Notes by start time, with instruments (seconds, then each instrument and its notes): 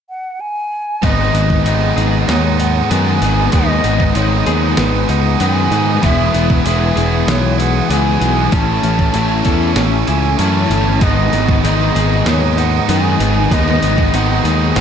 0.09 flute F#5
0.40 flute G#5
1.02 picked electric bass G#1, overdriven electric guitar G#2 D#3 G#3 B3 D#4, flute D#5, kick, open hi-hat
1.33 picked electric bass G#1, overdriven electric guitar G#3 B3 D#4, open hi-hat
1.50 kick
1.64 picked electric bass G#1, overdriven electric guitar D#3 G#3 B3 D#4, flute D#5, open hi-hat
1.96 picked electric bass G#1, overdriven electric guitar G#3 B3 D#4, clean electric guitar G#4, open hi-hat
2.27 picked electric bass D#2, overdriven electric guitar G#2 D#3 G#3 B3 D#4, flute C#5, snare, open hi-hat
2.57 overdriven electric guitar G#3 B3 D#4, flute F#5, open hi-hat
2.90 picked electric bass F#2, overdriven electric guitar D#3 G#3 B3 D#4, flute G#5, open hi-hat
3.21 picked electric bass G#1, overdriven electric guitar G#3 B3 D#4, open hi-hat
3.52 picked electric bass D#2, overdriven electric guitar G#2 D#3 G#3 B3 D#4, flute D#5, kick, open hi-hat
3.84 picked electric bass G#1, overdriven electric guitar G#3 B3 D#4, open hi-hat
4.00 kick
4.15 picked electric bass G#1, overdriven electric guitar D#3 G#3 B3 D#4, flute C#5, open hi-hat
4.46 picked electric bass D#2, overdriven electric guitar G#3 B3 D#4, clean electric guitar G#4, open hi-hat
4.77 picked electric bass G#1, overdriven electric guitar G#2 D#3 G#3 B3 D#4, flute B4, snare, open hi-hat
5.08 picked electric bass C#2, overdriven electric guitar G#3 B3 D#4, flute F#5, open hi-hat
5.40 picked electric bass F#2, overdriven electric guitar D#3 G#3 B3 D#4, flute G#5, open hi-hat
5.71 picked electric bass G#2, overdriven electric guitar G#3 B3 D#4, open hi-hat
6.02 picked electric bass E1, overdriven electric guitar E3 G#3 B3 E4, flute E5, kick, open hi-hat
6.33 picked electric bass E1, overdriven electric guitar G#3 B3 E4, open hi-hat
6.50 kick
6.65 picked electric bass E1, overdriven electric guitar E3 G#3 B3 E4, flute E5, open hi-hat
6.96 picked electric bass E1, overdriven electric guitar G#3 B3 E4, clean electric guitar G#4, open hi-hat
7.27 picked electric bass B1, overdriven electric guitar E3 G#3 B3 E4, flute C#5, snare, open hi-hat
7.58 overdriven electric guitar G#3 B3 E4, flute F#5, open hi-hat
7.89 picked electric bass C#2, overdriven electric guitar E3 G#3 B3 E4, flute G#5, open hi-hat
8.21 picked electric bass B1, overdriven electric guitar G#3 B3 E4, open hi-hat
8.52 picked electric bass A1, overdriven electric guitar A2 E3 A3 C#4 E4, flute A5, kick, open hi-hat
8.83 picked electric bass A1, overdriven electric guitar A3 C#4 E4, open hi-hat
8.99 kick
9.14 picked electric bass A1, overdriven electric guitar E3 A3 C#4 E4, open hi-hat
9.45 picked electric bass E2, overdriven electric guitar A3 C#4 E4, clean electric guitar A4, kick, open hi-hat
9.76 picked electric bass A1, overdriven electric guitar A2 E3 A3 C#4 E4, snare, open hi-hat
10.07 picked electric bass C#2, overdriven electric guitar A3 C#4 E4, flute G#5, open hi-hat
10.39 picked electric bass F#2, overdriven electric guitar E3 A3 C#4 E4, flute A5, open hi-hat
10.70 picked electric bass G1, overdriven electric guitar A3 C#4 E4, open hi-hat
11.01 picked electric bass G#1, overdriven electric guitar G#2 D#3 G#3 B3 D#4, flute D#5, kick, open hi-hat
11.32 picked electric bass G#1, overdriven electric guitar G#3 B3 D#4, open hi-hat
11.49 kick
11.63 picked electric bass G#1, overdriven electric guitar D#3 G#3 B3 D#4, flute D#5, open hi-hat
11.94 picked electric bass G#1, overdriven electric guitar G#3 B3 D#4, clean electric guitar G#4, open hi-hat
12.25 picked electric bass D#2, overdriven electric guitar G#2 D#3 G#3 B3 D#4, flute C#5, snare, open hi-hat
12.57 overdriven electric guitar G#3 B3 D#4, flute F#5, open hi-hat
12.88 picked electric bass F#2, overdriven electric guitar D#3 G#3 B3 D#4, flute G#5, open hi-hat
13.20 picked electric bass G#1, overdriven electric guitar G#3 B3 D#4, open hi-hat
13.51 picked electric bass D#2, overdriven electric guitar G#2 D#3 G#3 B3 D#4, flute D#5, kick, open hi-hat
13.68 snare
13.82 picked electric bass G#1, overdriven electric guitar G#3 B3 D#4, open hi-hat
13.98 kick
14.13 picked electric bass G#1, overdriven electric guitar D#3 G#3 B3 D#4, flute F#5, open hi-hat
14.44 picked electric bass D#2, overdriven electric guitar G#3 B3 D#4, clean electric guitar G#4, open hi-hat
14.75 picked electric bass G#1, overdriven electric guitar G#2 D#3 G#3 B3, snare, open hi-hat